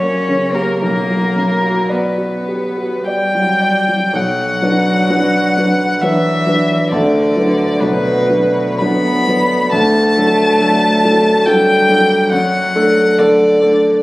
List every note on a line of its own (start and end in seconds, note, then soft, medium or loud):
0.00 0.78 F#2 soft
0.00 0.44 A#3 soft
0.00 0.55 C#4 medium
0.00 0.56 C#5 medium
0.28 0.71 C#3 soft
0.53 0.80 A#3 soft
0.53 0.82 G4 soft
0.53 0.81 A#4 medium
0.81 4.10 B1 medium
0.81 1.92 A#3 medium
0.81 1.91 A#4 medium
1.10 1.52 F#3 soft
1.36 1.78 F#2 soft
1.63 2.06 F#4 soft
1.89 3.06 B3 soft
1.89 3.06 B4 soft
1.89 2.35 D5 soft
2.18 2.66 F#4 soft
2.48 2.78 G4 soft
2.77 3.23 F#4 soft
3.06 4.15 G3 medium
3.06 3.51 D5 soft
3.06 4.17 G5 medium
3.35 3.78 F#3 soft
3.61 4.03 D5 soft
3.88 4.13 F#3 soft
4.13 4.61 B1 medium
4.13 6.00 F#3 medium
4.13 6.03 F#5 medium
4.62 5.06 F#3 soft
4.62 5.06 D4 soft
4.62 5.06 B4 soft
5.10 5.52 F#3 soft
5.10 5.52 D4 soft
5.10 5.52 B4 soft
5.57 5.98 F#3 soft
5.57 5.98 D4 soft
5.57 5.98 B4 soft
6.01 6.92 E3 medium
6.01 6.43 F#3 soft
6.01 6.43 D4 soft
6.01 6.43 B4 soft
6.01 6.90 E5 medium
6.47 6.88 F#3 soft
6.47 6.88 D4 soft
6.47 6.88 B4 soft
6.91 7.35 D2 medium
6.91 7.82 D3 medium
6.91 7.82 D5 medium
7.37 7.78 F#3 soft
7.37 7.78 D4 soft
7.37 7.78 B4 soft
7.81 8.81 B2 medium
7.81 8.26 F#3 soft
7.81 8.26 D4 soft
7.81 8.80 B4 medium
7.81 8.27 B4 soft
8.29 8.76 F#3 soft
8.29 8.76 D4 soft
8.29 8.76 B4 soft
8.79 9.24 F#3 soft
8.79 9.73 B3 medium
8.79 9.24 D4 soft
8.79 9.24 B4 medium
8.79 9.71 B5 medium
9.28 9.69 F#3 soft
9.28 9.70 D4 soft
9.28 9.70 B4 soft
9.72 10.16 D2 medium
9.72 11.44 A3 medium
9.72 11.47 A5 loud
10.17 10.57 F#3 soft
10.17 10.58 D4 soft
10.17 10.58 A4 medium
10.61 11.00 F#3 medium
10.61 11.00 D4 medium
10.61 11.00 A4 medium
11.04 11.43 F#3 soft
11.04 11.43 D4 soft
11.04 11.43 A4 medium
11.46 11.85 F#3 medium
11.46 12.34 G3 medium
11.46 11.85 D4 medium
11.46 11.85 A4 medium
11.46 12.31 G5 loud
11.89 12.28 F#3 soft
11.89 12.29 D4 soft
11.89 12.29 A4 medium
12.31 12.74 F#2 medium
12.31 13.20 F#3 medium
12.31 13.20 F#5 medium
12.75 13.15 A3 medium
12.75 13.15 D4 soft
12.75 13.15 A4 medium
13.18 14.03 D3 medium
13.18 13.58 A3 medium
13.18 13.58 D4 medium
13.18 13.59 A4 medium
13.18 14.03 D5 medium
13.61 14.01 A3 medium
13.61 14.01 D4 medium
13.61 14.02 A4 medium